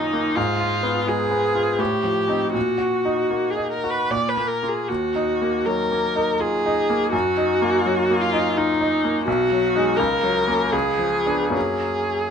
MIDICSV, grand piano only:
0, 0, Header, 1, 2, 480
1, 0, Start_track
1, 0, Key_signature, -6, "minor"
1, 0, Tempo, 716846
1, 244, Time_signature, 3, 2, 24, 8
1, 1203, Tempo, 768246
1, 4083, Tempo, 715137
1, 6003, Key_signature, 6, "major"
1, 6483, Tempo, 747198
1, 6963, Tempo, 829876
1, 7874, End_track
2, 0, Start_track
2, 0, Title_t, "Grand piano"
2, 0, Program_c, 0, 0
2, 0, Control_c, 0, 64, 127
2, 0, Note_on_c, 0, 42, 35
2, 0, Note_on_c, 0, 51, 31
2, 0, Note_on_c, 0, 58, 33
2, 0, Note_on_c, 0, 63, 35
2, 0, Note_on_c, 0, 65, 29
2, 87, Note_off_c, 0, 58, 0
2, 87, Note_on_c, 0, 58, 31
2, 181, Note_off_c, 0, 63, 0
2, 220, Note_off_c, 0, 42, 0
2, 246, Note_off_c, 0, 58, 0
2, 246, Note_on_c, 0, 44, 40
2, 256, Note_off_c, 0, 51, 0
2, 256, Control_c, 0, 64, 0
2, 262, Note_off_c, 0, 65, 0
2, 346, Control_c, 0, 64, 127
2, 406, Note_on_c, 0, 65, 36
2, 555, Note_on_c, 0, 59, 34
2, 656, Note_off_c, 0, 65, 0
2, 717, Note_on_c, 0, 56, 30
2, 811, Note_off_c, 0, 59, 0
2, 874, Note_on_c, 0, 59, 32
2, 974, Note_off_c, 0, 56, 0
2, 1038, Note_on_c, 0, 65, 30
2, 1136, Note_off_c, 0, 59, 0
2, 1177, Note_off_c, 0, 44, 0
2, 1196, Note_on_c, 0, 45, 36
2, 1203, Note_off_c, 0, 65, 0
2, 1212, Control_c, 0, 64, 0
2, 1321, Control_c, 0, 64, 127
2, 1356, Note_on_c, 0, 53, 27
2, 1504, Note_on_c, 0, 60, 22
2, 1511, Note_on_c, 0, 63, 24
2, 1611, Note_off_c, 0, 53, 0
2, 1653, Note_off_c, 0, 60, 0
2, 1657, Note_off_c, 0, 63, 0
2, 1658, Note_off_c, 0, 45, 0
2, 1666, Note_on_c, 0, 46, 31
2, 1686, Control_c, 0, 64, 0
2, 1797, Control_c, 0, 64, 127
2, 1818, Note_on_c, 0, 66, 26
2, 1988, Note_on_c, 0, 63, 27
2, 2083, Note_off_c, 0, 66, 0
2, 2145, Note_on_c, 0, 58, 21
2, 2250, Note_off_c, 0, 63, 0
2, 2309, Note_on_c, 0, 63, 24
2, 2412, Note_off_c, 0, 58, 0
2, 2479, Note_on_c, 0, 66, 24
2, 2576, Note_off_c, 0, 63, 0
2, 2616, Note_off_c, 0, 46, 0
2, 2644, Note_off_c, 0, 66, 0
2, 2644, Note_on_c, 0, 46, 30
2, 2658, Control_c, 0, 64, 0
2, 2784, Control_c, 0, 64, 127
2, 2814, Note_on_c, 0, 58, 24
2, 2963, Note_off_c, 0, 58, 0
2, 2973, Note_on_c, 0, 58, 21
2, 2978, Note_on_c, 0, 65, 22
2, 3118, Note_off_c, 0, 46, 0
2, 3118, Note_off_c, 0, 58, 0
2, 3120, Note_off_c, 0, 65, 0
2, 3138, Note_on_c, 0, 39, 30
2, 3146, Control_c, 0, 64, 0
2, 3269, Control_c, 0, 64, 127
2, 3302, Note_on_c, 0, 63, 28
2, 3464, Note_on_c, 0, 58, 29
2, 3555, Note_off_c, 0, 63, 0
2, 3618, Note_on_c, 0, 54, 27
2, 3715, Note_off_c, 0, 58, 0
2, 3779, Note_on_c, 0, 58, 28
2, 3869, Note_off_c, 0, 54, 0
2, 3928, Note_on_c, 0, 63, 30
2, 4025, Note_off_c, 0, 58, 0
2, 4076, Note_on_c, 0, 65, 27
2, 4180, Note_off_c, 0, 63, 0
2, 4242, Note_off_c, 0, 65, 0
2, 4253, Note_on_c, 0, 63, 33
2, 4413, Note_on_c, 0, 58, 31
2, 4509, Note_off_c, 0, 63, 0
2, 4546, Note_off_c, 0, 39, 0
2, 4566, Note_on_c, 0, 42, 37
2, 4573, Note_off_c, 0, 58, 0
2, 4582, Control_c, 0, 64, 0
2, 4698, Control_c, 0, 64, 127
2, 4733, Note_on_c, 0, 63, 33
2, 4896, Note_on_c, 0, 58, 34
2, 4994, Note_off_c, 0, 63, 0
2, 5057, Note_on_c, 0, 54, 34
2, 5156, Note_off_c, 0, 58, 0
2, 5222, Note_on_c, 0, 58, 34
2, 5314, Note_off_c, 0, 54, 0
2, 5375, Note_on_c, 0, 63, 36
2, 5473, Note_off_c, 0, 58, 0
2, 5539, Note_on_c, 0, 65, 32
2, 5626, Note_off_c, 0, 63, 0
2, 5692, Note_off_c, 0, 65, 0
2, 5697, Note_on_c, 0, 63, 35
2, 5853, Note_on_c, 0, 58, 32
2, 5944, Note_off_c, 0, 63, 0
2, 5974, Note_off_c, 0, 42, 0
2, 6007, Note_off_c, 0, 58, 0
2, 6007, Note_on_c, 0, 35, 41
2, 6015, Control_c, 0, 64, 0
2, 6124, Control_c, 0, 64, 127
2, 6171, Note_on_c, 0, 54, 33
2, 6331, Note_on_c, 0, 56, 31
2, 6335, Note_on_c, 0, 63, 32
2, 6423, Note_off_c, 0, 54, 0
2, 6471, Note_off_c, 0, 35, 0
2, 6473, Note_off_c, 0, 56, 0
2, 6475, Note_off_c, 0, 63, 0
2, 6490, Note_on_c, 0, 37, 37
2, 6493, Control_c, 0, 64, 0
2, 6595, Control_c, 0, 64, 127
2, 6644, Note_on_c, 0, 54, 30
2, 6801, Note_on_c, 0, 58, 28
2, 6805, Note_on_c, 0, 61, 29
2, 6899, Note_off_c, 0, 54, 0
2, 6947, Note_off_c, 0, 58, 0
2, 6950, Note_off_c, 0, 37, 0
2, 6950, Note_off_c, 0, 61, 0
2, 6959, Note_on_c, 0, 37, 37
2, 6975, Control_c, 0, 64, 0
2, 7055, Control_c, 0, 64, 127
2, 7114, Note_on_c, 0, 53, 26
2, 7271, Note_on_c, 0, 59, 21
2, 7273, Note_on_c, 0, 62, 26
2, 7369, Note_off_c, 0, 53, 0
2, 7408, Note_on_c, 0, 42, 27
2, 7413, Note_on_c, 0, 54, 19
2, 7418, Note_off_c, 0, 59, 0
2, 7418, Note_on_c, 0, 58, 20
2, 7419, Note_off_c, 0, 37, 0
2, 7419, Note_off_c, 0, 62, 0
2, 7428, Note_on_c, 0, 61, 21
2, 7448, Control_c, 0, 64, 0
2, 7550, Control_c, 0, 64, 127
2, 7874, Note_off_c, 0, 42, 0
2, 7874, Note_off_c, 0, 54, 0
2, 7874, Note_off_c, 0, 58, 0
2, 7874, Note_off_c, 0, 61, 0
2, 7874, End_track
0, 0, End_of_file